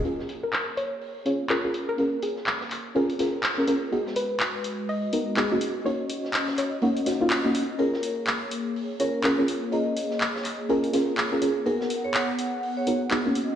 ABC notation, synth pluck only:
X:1
M:4/4
L:1/16
Q:"Swing 16ths" 1/4=124
K:Bbphr
V:1 name="Synth pluck"
A3 B3 d6 B3 B- | B2 A12 z2 | z2 c6 e8 | d6 d8 z2 |
z16 | z16 | z16 |]